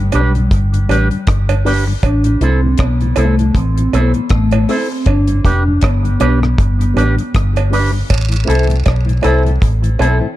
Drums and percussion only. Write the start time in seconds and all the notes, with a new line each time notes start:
0.12 closed hi-hat, cowbell
0.35 closed hi-hat
0.51 kick, closed hi-hat
0.74 closed hi-hat
0.89 closed hi-hat, cowbell
1.11 closed hi-hat
1.27 kick, cross-stick, closed hi-hat
1.49 closed hi-hat, cowbell
1.66 open hi-hat
2.03 kick, closed hi-hat, cowbell
2.24 closed hi-hat
2.41 closed hi-hat
2.78 kick, cross-stick, closed hi-hat, cowbell
3.01 closed hi-hat
3.16 closed hi-hat, cowbell
3.39 closed hi-hat
3.55 kick, closed hi-hat
3.77 closed hi-hat
3.93 closed hi-hat, cowbell
4.14 closed hi-hat
4.29 kick, cross-stick, closed hi-hat
4.51 closed hi-hat, cowbell
4.69 open hi-hat
5.06 kick, closed hi-hat, cowbell
5.27 closed hi-hat
5.45 kick, closed hi-hat
5.81 kick, cross-stick, closed hi-hat, cowbell
6.05 closed hi-hat
6.20 closed hi-hat, cowbell
6.43 cross-stick
6.58 kick, closed hi-hat
6.81 closed hi-hat
6.97 closed hi-hat, cowbell
7.18 closed hi-hat
7.34 kick, cross-stick, closed hi-hat
7.56 closed hi-hat, cowbell
7.73 open hi-hat
8.10 kick, closed hi-hat, cowbell, vibraslap
8.32 closed hi-hat
8.50 closed hi-hat
8.70 closed hi-hat
8.86 kick, cross-stick, closed hi-hat, cowbell
9.09 closed hi-hat
9.23 closed hi-hat, cowbell
9.46 closed hi-hat
9.62 kick, closed hi-hat
9.84 closed hi-hat
9.99 closed hi-hat, cowbell